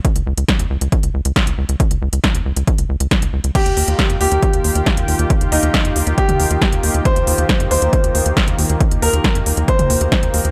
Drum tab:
CC |----------------|----------------|x---------------|----------------|
HH |xx-xxx-xxx-xxx-x|xx-xxx-xxx-xxx-x|xxoxxxoxxxoxxxox|xxoxxxoxxxoxxxox|
SD |----o-------o---|----o-------o---|----o-------o---|----o-------o---|
T2 |----------------|----------------|----------------|---------o------|
BD |o---o---o---o---|o---o---o---o---|o---o---o---o---|o---o---o---o---|

CC |----------------|----------------|
HH |xxoxxxoxxxoxxxox|xxoxxxoxxxoxxxox|
SD |----o-------o---|----o-------o---|
T2 |----------------|---------o------|
BD |o---o---o---o---|o---o---o---o---|